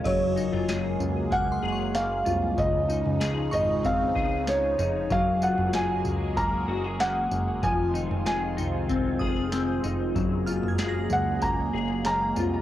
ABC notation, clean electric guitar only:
X:1
M:4/4
L:1/16
Q:1/4=95
K:Gblyd
V:1 name="Clean electric guitar"
G,2 E F A4 B,2 A2 B,2 F2 | D,2 E2 A2 E2 C2 A4 E2 | G,2 F2 A4 B,2 G A B,4 | F,2 E2 A2 E2 C2 A2 C2 E2 |
G,2 F2 A4 B,2 A2 B,2 F2 |]